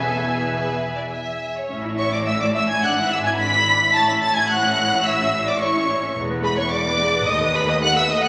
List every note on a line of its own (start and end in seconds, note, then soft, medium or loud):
0.00 1.48 E2 medium
0.00 1.11 B2 medium
0.00 1.11 B3 medium
0.00 0.34 A4 medium
0.00 1.49 E5 medium
0.00 1.44 G#5 medium
0.37 0.52 G#4 medium
0.51 0.95 B4 medium
0.95 1.01 D5 medium
1.10 1.54 E5 medium
1.56 1.70 C#5 medium
1.69 2.79 A1 medium
1.69 2.79 A2 medium
1.69 1.83 C#4 medium
1.69 1.83 E5 medium
1.84 1.98 E4 medium
1.84 1.98 C#5 medium
1.98 2.13 C#4 medium
1.98 2.11 C#5 medium
1.98 2.13 E5 medium
1.98 2.12 C#6 medium
2.12 2.26 E4 medium
2.12 2.26 C#5 medium
2.12 2.18 D5 medium
2.12 2.18 D6 medium
2.26 2.39 C#4 medium
2.26 2.40 E5 medium
2.26 2.32 E5 medium
2.26 2.40 E6 medium
2.41 2.55 E4 soft
2.41 2.55 C#5 medium
2.41 2.55 D5 medium
2.41 2.47 D6 medium
2.54 2.69 C#4 medium
2.54 2.60 E5 medium
2.54 2.69 E5 medium
2.54 2.69 E6 medium
2.68 2.83 E4 medium
2.68 2.83 C#5 medium
2.68 2.82 G#5 medium
2.68 2.83 G#6 medium
2.81 3.96 G#1 medium
2.81 3.96 G#2 medium
2.81 2.96 D4 medium
2.81 2.96 D5 medium
2.81 3.10 F#5 medium
2.81 3.12 F#6 medium
2.98 3.12 E4 medium
2.98 3.12 E5 medium
3.09 3.26 D4 medium
3.09 3.26 D5 medium
3.09 3.24 E5 medium
3.09 3.18 E6 medium
3.22 3.40 E4 medium
3.22 3.38 G#5 medium
3.26 3.40 E5 medium
3.26 3.32 G#6 medium
3.35 3.93 B5 medium
3.35 3.94 B6 loud
3.40 3.53 D4 medium
3.40 3.53 D5 medium
3.54 3.68 E4 medium
3.54 3.68 E5 medium
3.68 3.82 D4 medium
3.68 3.82 D5 medium
3.82 3.94 E4 medium
3.82 3.95 E5 medium
3.93 6.17 A1 medium
3.93 6.17 A2 medium
3.93 4.08 E4 medium
3.93 4.08 C#5 medium
3.93 4.08 A5 medium
3.93 4.10 A6 loud
4.06 4.23 C#4 medium
4.06 4.23 E5 medium
4.06 4.21 B5 medium
4.06 4.15 B6 medium
4.22 4.37 E4 medium
4.22 4.37 C#5 medium
4.22 4.36 A5 medium
4.22 4.36 A6 loud
4.35 4.51 C#4 medium
4.35 4.51 E5 medium
4.35 4.49 G#5 medium
4.35 4.50 G#6 medium
4.48 4.64 E4 medium
4.48 4.63 C#5 medium
4.48 5.04 F#5 medium
4.48 5.05 F#6 loud
4.64 4.78 C#4 medium
4.64 4.78 E5 medium
4.78 4.92 E4 medium
4.78 4.92 C#5 medium
4.92 5.06 C#4 medium
4.92 5.06 E5 medium
5.04 5.19 E4 medium
5.04 5.19 C#5 medium
5.04 5.47 E5 medium
5.04 5.48 E6 medium
5.20 5.34 C#4 medium
5.20 5.34 E5 medium
5.34 5.48 E4 medium
5.34 5.48 C#5 medium
5.47 5.62 C#4 medium
5.47 5.61 D5 medium
5.47 5.62 E5 medium
5.47 5.62 D6 medium
5.61 5.75 E4 medium
5.61 6.16 C#5 medium
5.61 5.75 C#5 medium
5.61 6.15 C#6 medium
5.76 5.90 C#4 medium
5.76 5.90 E5 medium
5.89 6.03 E4 medium
5.89 6.03 C#5 medium
6.03 6.17 C#4 medium
6.03 6.16 E5 medium
6.16 7.25 E1 medium
6.16 7.25 E2 medium
6.16 6.29 G#3 medium
6.16 6.29 G#4 medium
6.30 6.44 B3 medium
6.30 6.44 B4 medium
6.43 6.58 G#3 medium
6.43 6.58 G#4 medium
6.43 6.49 B4 medium
6.43 6.57 B5 medium
6.57 6.72 B3 medium
6.57 6.72 B4 medium
6.57 6.63 C#5 medium
6.57 6.71 C#6 medium
6.71 6.84 G#3 medium
6.71 6.84 G#4 medium
6.71 7.27 D5 medium
6.71 7.27 D6 loud
6.85 6.99 B3 medium
6.85 6.99 B4 medium
7.00 7.14 G#3 medium
7.00 7.14 G#4 medium
7.14 7.28 B3 medium
7.14 7.28 B4 medium
7.27 8.28 D#2 medium
7.27 7.40 A3 medium
7.27 7.40 A4 medium
7.27 7.55 D#5 loud
7.27 7.55 D#6 medium
7.41 7.55 B3 medium
7.41 7.55 B4 medium
7.55 7.68 A3 medium
7.55 7.68 A4 medium
7.55 7.69 B4 medium
7.55 7.69 B5 medium
7.68 7.82 B3 medium
7.68 7.82 B4 medium
7.68 7.83 D#5 medium
7.68 7.74 D#6 medium
7.82 7.95 A3 medium
7.82 7.95 A4 medium
7.82 7.95 F#5 loud
7.82 7.96 F#6 loud
7.96 8.10 B3 medium
7.96 8.10 B4 medium
7.96 8.10 E5 medium
7.96 8.09 E6 loud
8.09 8.23 A3 medium
8.09 8.23 A4 medium
8.09 8.23 D#5 loud
8.09 8.23 D#6 loud
8.22 8.28 B3 medium
8.22 8.28 B4 medium
8.22 8.28 F#5 medium
8.22 8.28 F#6 loud